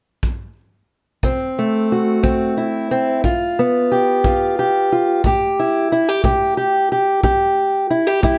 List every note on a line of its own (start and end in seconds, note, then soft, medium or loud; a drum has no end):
0.23 kick medium
1.23 1.84 D2 medium
1.23 2.22 C4 medium
1.23 kick medium
1.59 3.21 A3 soft
1.92 2.57 F#4 soft
2.23 2.84 D2 medium
2.23 2.90 C4 soft
2.23 kick medium
2.57 3.24 E4 soft
2.91 3.21 C4 soft
3.24 3.84 G2 medium
3.24 4.25 F4 medium
3.24 kick medium
3.59 5.21 B3 medium
3.92 4.58 G4 medium
4.24 4.85 G2 medium
4.24 4.91 F4 medium
4.24 kick medium
4.59 5.21 G4 soft
4.92 5.21 F4 soft
5.24 5.85 A2 medium
5.24 5.92 G4 medium
5.24 kick medium
5.59 5.91 E4 soft
5.92 6.09 E4 medium
6.09 6.24 G4 soft
6.24 6.84 A2 medium
6.24 6.56 G4 medium
6.24 kick medium
6.57 6.91 G4 medium
6.92 7.23 G4 medium
7.23 7.84 A2 medium
7.23 7.90 G4 medium
7.23 kick medium
7.90 8.07 E4 medium
8.07 8.22 G4 soft
8.23 8.38 A2 medium
8.23 8.38 E4 medium
8.23 8.38 G4 medium
8.23 kick medium